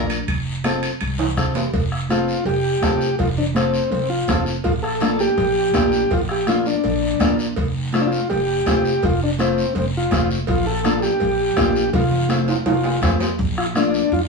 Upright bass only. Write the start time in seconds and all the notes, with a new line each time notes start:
Already playing: A#1
0.28 F1
1.01 C2
1.38 F1
1.74 F1
2.45 F1
2.83 F1
3.20 F1
3.92 F1
4.29 F1
4.65 A#1
5.38 A#1
5.75 A#1
6.11 A#1
6.85 A#1
7.21 A#1
7.57 F1
8.31 F1
8.67 F1
9.03 F1
9.76 F1
10.12 F1
10.48 A#1
11.21 A#1
11.57 A#1
11.94 F1
12.66 F1
13.03 F2
13.39 A#1
14.12 F2